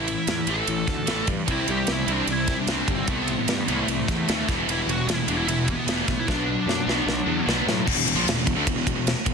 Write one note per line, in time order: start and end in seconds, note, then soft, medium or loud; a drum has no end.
0.00 0.15 A1 medium
0.00 0.49 E4 loud
0.08 0.26 A2 medium
0.08 0.26 E3 medium
0.08 ride medium
0.27 0.41 E2 medium
0.27 0.46 A2 medium
0.27 0.46 E3 medium
0.27 snare loud
0.27 ride loud
0.47 0.61 A1 medium
0.47 0.67 A2 medium
0.47 0.67 E3 loud
0.47 0.68 A3 loud
0.47 1.25 A4 medium
0.47 ride medium
0.67 0.81 A1 medium
0.67 0.86 A2 medium
0.67 0.87 E3 medium
0.67 ride medium
0.87 1.01 D2 medium
0.87 1.06 A2 medium
0.87 1.06 E3 medium
0.87 kick medium
0.87 snare soft
0.87 ride medium
1.07 1.21 A1 medium
1.07 1.27 A2 medium
1.07 1.28 E3 medium
1.07 1.28 A3 loud
1.07 snare loud
1.07 ride loud
1.27 1.41 G2 medium
1.27 1.47 A2 medium
1.27 1.47 E3 medium
1.27 kick medium
1.27 ride medium
1.47 1.62 C2 medium
1.47 1.67 C3 medium
1.47 2.48 E3 medium
1.47 1.68 G3 medium
1.47 1.68 C4 medium
1.47 2.46 E4 loud
1.47 kick loud
1.47 ride loud
1.51 1.71 E4 medium
1.68 1.82 C2 medium
1.68 1.86 C3 medium
1.68 1.86 G3 medium
1.68 1.92 G4 medium
1.68 ride medium
1.87 2.02 C2 medium
1.87 2.07 C3 medium
1.87 2.07 G3 medium
1.87 snare loud
1.87 ride loud
1.92 2.12 E4 medium
2.07 2.21 C2 medium
2.07 2.27 C3 medium
2.07 2.28 G3 medium
2.07 2.28 C4 loud
2.07 ride medium
2.12 2.32 D4 medium
2.27 2.55 C2 medium
2.27 2.47 C3 medium
2.27 2.47 G3 medium
2.27 ride medium
2.32 2.60 E4 medium
2.46 2.67 C3 medium
2.46 2.67 E3 medium
2.46 2.67 G3 medium
2.46 2.66 C4 medium
2.46 2.69 E4 medium
2.46 kick medium
2.46 snare soft
2.46 ride medium
2.60 2.90 D4 medium
2.67 2.81 C2 medium
2.67 2.87 C3 medium
2.67 3.07 E3 medium
2.67 2.87 G3 medium
2.67 2.88 C4 medium
2.67 3.09 E4 medium
2.67 snare loud
2.67 ride medium
2.88 3.02 G1 medium
2.88 3.06 C3 medium
2.88 3.07 G3 medium
2.88 3.09 C4 medium
2.88 kick medium
2.88 ride medium
3.07 3.35 C2 medium
3.07 3.27 A2 medium
3.07 4.07 C3 medium
3.07 3.27 E3 medium
3.07 3.27 A3 loud
3.07 3.68 B3 medium
3.07 4.07 C4 loud
3.07 4.06 E4 medium
3.07 kick loud
3.07 ride medium
3.28 3.46 A2 medium
3.28 3.47 E3 medium
3.28 ride medium
3.48 3.61 G2 medium
3.48 3.66 A2 medium
3.48 3.66 E3 medium
3.48 snare loud
3.48 ride loud
3.68 3.82 C2 medium
3.68 3.87 A2 medium
3.68 3.87 E3 medium
3.68 4.44 A3 medium
3.68 3.88 A3 medium
3.68 ride medium
3.88 4.02 C2 medium
3.88 4.06 A2 medium
3.88 4.06 E3 medium
3.88 ride medium
4.08 4.22 E2 medium
4.08 4.26 A2 medium
4.08 4.26 C3 medium
4.08 4.26 E3 medium
4.08 4.28 A3 medium
4.08 4.27 C4 medium
4.08 4.27 E4 medium
4.08 kick medium
4.08 snare soft
4.08 ride medium
4.28 4.42 D#2 medium
4.28 4.47 A2 medium
4.28 4.47 C3 medium
4.28 4.47 E3 loud
4.28 4.47 A3 loud
4.28 4.48 C4 medium
4.28 4.48 E4 medium
4.28 snare loud
4.28 ride loud
4.48 4.62 E1 medium
4.48 4.66 E2 medium
4.48 4.67 B2 medium
4.48 4.67 E3 loud
4.48 5.47 G3 medium
4.48 5.48 B3 loud
4.48 5.48 E4 loud
4.48 kick medium
4.48 snare soft
4.48 ride medium
4.67 4.81 E1 medium
4.67 4.87 E2 medium
4.67 4.87 B2 medium
4.67 4.88 E3 loud
4.67 4.90 E4 medium
4.67 ride medium
4.87 5.01 E1 medium
4.87 5.06 E2 medium
4.87 5.06 B2 medium
4.87 5.08 F#4 medium
4.87 ride medium
5.07 5.21 E1 medium
5.07 5.26 E2 medium
5.07 5.27 B2 medium
5.07 5.27 E4 medium
5.07 snare loud
5.07 ride loud
5.27 5.41 E1 medium
5.27 5.46 E2 medium
5.27 5.47 B2 loud
5.27 5.47 E3 loud
5.27 5.38 D4 medium
5.27 ride medium
5.38 5.47 E4 medium
5.47 5.75 E1 medium
5.47 5.66 E2 medium
5.47 5.66 B2 medium
5.47 5.66 E3 medium
5.47 5.67 G3 medium
5.47 5.68 B3 medium
5.47 5.69 E4 loud
5.47 5.67 E4 medium
5.47 ride medium
5.67 5.86 E2 medium
5.67 5.86 B2 medium
5.67 6.08 E3 medium
5.67 6.07 G3 medium
5.67 6.08 B3 medium
5.67 6.27 B3 medium
5.67 6.07 E4 medium
5.67 kick medium
5.67 ride medium
5.87 6.01 E1 loud
5.87 6.07 E2 medium
5.87 6.07 B2 loud
5.87 6.08 E3 loud
5.87 snare loud
5.87 ride loud
6.08 6.21 B1 medium
6.08 6.26 E2 medium
6.08 6.26 B2 medium
6.08 6.19 A3 medium
6.08 kick medium
6.08 snare soft
6.08 ride medium
6.19 6.29 E4 medium
6.28 6.55 B1 medium
6.28 6.47 B2 medium
6.28 6.47 F#3 medium
6.28 6.47 B3 loud
6.28 7.25 D4 loud
6.28 7.48 D4 medium
6.28 kick loud
6.28 snare medium
6.48 6.66 B2 medium
6.48 6.66 F#3 medium
6.66 6.80 F#2 medium
6.66 6.85 B2 medium
6.66 6.86 F#3 medium
6.66 snare medium
6.87 7.01 B1 medium
6.87 7.05 B2 medium
6.87 7.06 F#3 loud
6.87 7.07 B3 loud
6.87 snare medium
7.06 7.20 B1 medium
7.06 7.25 B2 medium
7.06 7.25 F#3 medium
7.06 snare medium
7.26 7.40 E2 medium
7.26 7.45 B2 medium
7.26 7.45 F#3 medium
7.26 7.46 B3 medium
7.26 7.45 D4 loud
7.46 7.61 B1 loud
7.46 7.65 B2 medium
7.46 7.66 F#3 medium
7.46 7.66 B3 medium
7.46 7.87 D4 medium
7.46 snare medium
7.66 7.80 A2 medium
7.66 7.85 B2 medium
7.66 7.85 F#3 medium
7.66 snare medium
7.86 7.95 E1 loud
7.86 7.96 E2 medium
7.86 7.96 B2 loud
7.86 kick loud
7.86 crash loud
7.95 8.04 E1 medium
7.95 8.06 E2 medium
7.95 8.07 B2 medium
8.05 8.14 E1 medium
8.05 8.17 E2 medium
8.05 8.17 B2 medium
8.05 ride medium
8.15 8.23 A#1 medium
8.15 8.27 A#2 loud
8.15 8.27 F3 medium
8.24 8.34 E1 medium
8.24 ride loud
8.28 8.37 E2 medium
8.28 8.38 B2 medium
8.28 snare loud
8.35 8.45 E1 medium
8.35 8.46 E2 medium
8.35 8.46 B2 medium
8.47 8.54 E1 medium
8.47 8.57 E2 medium
8.47 8.57 B2 medium
8.47 kick medium
8.47 ride medium
8.54 8.65 D2 medium
8.54 8.66 D3 loud
8.54 8.66 A3 loud
8.66 8.74 E1 medium
8.66 8.76 E2 medium
8.66 8.77 B2 medium
8.66 kick loud
8.66 ride loud
8.74 8.84 E1 medium
8.74 8.85 E2 medium
8.74 8.86 B2 medium
8.86 8.94 E1 medium
8.86 8.95 E2 medium
8.86 8.95 B2 medium
8.86 kick medium
8.86 ride medium
8.95 9.14 E1 medium
8.95 9.12 E2 medium
8.95 9.12 B2 medium
9.07 snare loud
9.07 ride loud
9.26 9.34 E1 medium
9.26 9.34 E2 medium
9.26 9.34 B2 medium
9.26 kick medium
9.26 ride medium